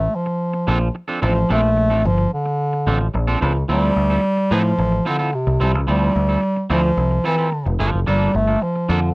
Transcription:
Already playing: A3
0.16 F3
0.26 muted clean electric guitar stroke
0.53 muted clean electric guitar stroke
0.67 A#1 F3 C4 D4 A4
0.81 muted clean electric guitar stroke
0.95 muted clean electric guitar stroke
1.08 F3 C4 D4 A4
1.22 A1 F3 C4 D4 A4
1.35 muted clean electric guitar stroke
1.49 A#1 F3 A3 C4 D4 A4
1.63 muted clean electric guitar stroke
1.77 muted clean electric guitar stroke
1.90 A1 F3 C4 D4 A4
2.05 G1 F3, muted clean electric guitar stroke
2.18 muted clean electric guitar stroke
2.34 D3
2.46 muted clean electric guitar stroke
2.73 muted clean electric guitar stroke
2.87 A1 F3 C4 D4 A4
3.01 muted clean electric guitar stroke
3.14 A#1, muted clean electric guitar stroke
3.27 F3 C4 D4 A4
3.41 C#2 F3 C4 D4 A4
3.55 muted clean electric guitar stroke
3.68 D2 F3 G3 C4 E4 A4
3.96 D2, muted clean electric guitar stroke
4.10 F3 C4 E4 A4
4.37 muted clean electric guitar stroke
4.51 A2 F3 C4 E4 A4
4.64 muted clean electric guitar stroke
4.78 A1, muted clean electric guitar stroke
4.92 muted clean electric guitar stroke
5.05 D3 F3 C4 E4 A4
5.19 F3 C4 E4 A4
5.35 C3
5.47 C2, muted clean electric guitar stroke
5.60 C2 F3 C4 E4 A4
5.74 C#2, muted clean electric guitar stroke
5.87 D2 F3 G3 C4 E4 A4
6.16 D2, muted clean electric guitar stroke
6.29 F3 C4 E4 A4
6.56 muted clean electric guitar stroke
6.70 D2 F3 C4 E4 A4
6.83 muted clean electric guitar stroke
6.97 C2, muted clean electric guitar stroke
7.11 muted clean electric guitar stroke
7.24 E3 F3 C4 E4 A4
7.38 F3 C4 E4 A4
7.52 muted clean electric guitar stroke
7.66 F1, muted clean electric guitar stroke
7.79 G1 F3 A#3 D4 A4
7.93 F#1, muted clean electric guitar stroke
8.06 G1 F3 G3 A#3 D4 A4
8.34 G1 A3, muted clean electric guitar stroke
8.47 F3 A#3 D4 A4
8.61 F3, muted clean electric guitar stroke
8.76 muted clean electric guitar stroke
8.89 F2 D3 F3 A#3 D4 A4
9.02 muted clean electric guitar stroke

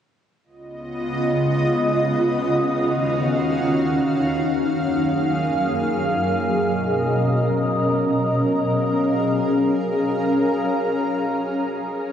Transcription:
0.44 C#2 C#3 B3 F4 D#5
2.42 D#2 D#3 C#4 F#4 F5
4.40 F#2 F#3 A#3 G#4
6.39 B2 C#4 A#4 D#5
8.37 F#3 C#4 G#4 A#4 F5

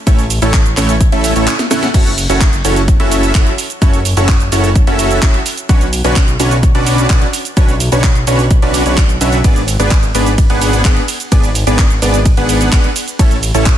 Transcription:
0.07 A1 A3 C#4 E4 A4 C#5, kick, closed hi-hat, shaker
0.19 closed hi-hat, shaker
0.30 open hi-hat, shaker
0.42 A1 A3 C#4 E4 A4 C#5, closed hi-hat, shaker
0.54 kick, clap, open hi-hat, shaker
0.65 closed hi-hat, shaker
0.77 A1 A3 C#4 E4 A4 C#5, clap, open hi-hat, shaker
0.89 closed hi-hat, shaker
1.01 kick, closed hi-hat, shaker
1.12 A1 A3 C#4 E4 A4 E5, closed hi-hat
1.24 open hi-hat, shaker
1.36 A1 A3 C#4 E4 A4 C#5, closed hi-hat, shaker
1.47 clap, closed hi-hat, shaker
1.59 snare, closed hi-hat, shaker
1.71 A3 C#4 E4 A4 F#5, snare, open hi-hat, shaker
1.83 snare, closed hi-hat, shaker
1.94 F#1 C#4 E4 F#4 A4 C#5, kick, closed hi-hat, crash, shaker
2.06 closed hi-hat, shaker
2.18 open hi-hat, shaker
2.29 F#1 C#4 E4 F#4 A4 C#5, closed hi-hat, shaker
2.41 kick, clap, closed hi-hat, shaker
2.53 closed hi-hat, shaker
2.65 F#1 C#4 E4 F#4 A4 C#5, open hi-hat, shaker
2.76 closed hi-hat, shaker
2.88 kick, closed hi-hat, shaker
3.00 F#1 C#4 E4 F#4 A4 E5, closed hi-hat
3.11 open hi-hat, shaker
3.23 closed hi-hat, shaker
3.35 F#1 C#4 E4 F#4 A4 E5, kick, clap, closed hi-hat, shaker
3.47 closed hi-hat
3.58 open hi-hat, shaker
3.70 closed hi-hat, shaker
3.82 F#1 C#4 E4 F#4 A4 C#5, kick, closed hi-hat, shaker
3.93 closed hi-hat, shaker
4.05 open hi-hat, shaker
4.17 F#1 C#4 E4 F#4 A4 C#5, closed hi-hat, shaker
4.29 kick, clap, open hi-hat, shaker
4.40 closed hi-hat, shaker
4.52 F#1 C#4 E4 F#4 A4 C#5, open hi-hat, shaker
4.64 closed hi-hat, shaker
4.75 kick, closed hi-hat, shaker
4.87 F#1 C#4 E4 F#4 A4 E5, closed hi-hat
4.99 open hi-hat, shaker
5.11 closed hi-hat, shaker
5.22 F#1 C#4 E4 F#4 A4 E5, kick, clap, closed hi-hat, shaker
5.34 closed hi-hat
5.46 open hi-hat, shaker
5.58 closed hi-hat, shaker
5.69 B1 C#4 D4 F#4 B4 C#5, kick, closed hi-hat, shaker
5.81 closed hi-hat, shaker
5.93 open hi-hat, shaker
6.04 B1 C#4 D4 F#4 B4 C#5, closed hi-hat, shaker
6.16 kick, clap, closed hi-hat, shaker
6.28 closed hi-hat, shaker
6.40 B1 C#4 D4 F#4 B4 C#5, open hi-hat, shaker
6.51 closed hi-hat, shaker
6.63 kick, closed hi-hat, shaker
6.75 B1 C#4 D4 F#4 B4 D5, closed hi-hat
6.86 open hi-hat, shaker
6.98 closed hi-hat, shaker
7.10 B1 C#4 D4 F#4 B4 D5, kick, clap, closed hi-hat, shaker
7.22 closed hi-hat
7.33 open hi-hat, shaker
7.45 closed hi-hat, shaker
7.57 B1 C#4 D4 F#4 B4 C#5, kick, closed hi-hat, shaker
7.69 closed hi-hat, shaker
7.80 open hi-hat, shaker
7.92 B1 C#4 D4 F#4 B4 C#5, closed hi-hat, shaker
8.04 kick, clap, open hi-hat, shaker
8.15 closed hi-hat, shaker
8.27 B1 C#4 D4 F#4 B4 C#5, open hi-hat, shaker
8.39 closed hi-hat, shaker
8.51 kick, closed hi-hat, shaker
8.62 B1 C#4 D4 F#4 B4 D5, closed hi-hat
8.74 open hi-hat, shaker
8.86 B1 C#4 D4 F#4 B4 C#5, closed hi-hat, shaker
8.97 kick, clap, closed hi-hat, shaker
9.09 closed hi-hat, shaker
9.21 B1 C#4 D4 F#4 B4 E5, open hi-hat, shaker
9.33 closed hi-hat, shaker
9.44 G#1 B3 D4 G#4 B4 D5, kick, closed hi-hat, ride, shaker
9.56 closed hi-hat, shaker
9.68 open hi-hat, shaker
9.79 G#1 B3 D4 G#4 B4 D5, closed hi-hat, shaker
9.91 kick, clap, closed hi-hat, ride, shaker
10.03 closed hi-hat, shaker
10.15 G#1 B3 D4 G#4 B4 D5, open hi-hat, shaker
10.26 closed hi-hat, shaker
10.38 kick, closed hi-hat, ride, shaker
10.50 G#1 B3 D4 G#4 B4 F#5, closed hi-hat
10.61 open hi-hat, shaker
10.73 closed hi-hat, shaker
10.85 G#1 B3 D4 G#4 B4 F#5, kick, clap, closed hi-hat, ride, shaker
10.97 closed hi-hat
11.08 open hi-hat, shaker
11.20 closed hi-hat, shaker
11.32 G#1 B3 D4 G#4 B4 D5, kick, closed hi-hat, ride, shaker
11.44 closed hi-hat, shaker
11.55 open hi-hat, shaker
11.67 G#1 B3 D4 G#4 B4 D5, closed hi-hat, shaker
11.79 kick, clap, open hi-hat, ride, shaker
11.90 closed hi-hat, shaker
12.02 G#1 B3 D4 G#4 B4 D5, open hi-hat, shaker
12.14 closed hi-hat, shaker
12.26 kick, closed hi-hat, ride, shaker
12.37 G#1 B3 D4 G#4 B4 F#5, closed hi-hat
12.49 open hi-hat, shaker
12.61 closed hi-hat, shaker
12.72 G#1 B3 D4 G#4 B4 F#5, kick, clap, closed hi-hat, ride, shaker
12.84 closed hi-hat
12.96 open hi-hat, shaker
13.08 closed hi-hat, shaker
13.19 A1 A3 C#4 E4 A4 C#5, kick, closed hi-hat, ride, shaker
13.31 closed hi-hat, shaker
13.43 open hi-hat, shaker
13.54 A1 A3 C#4 E4 A4 C#5, closed hi-hat, shaker
13.66 kick, clap, closed hi-hat, ride, shaker

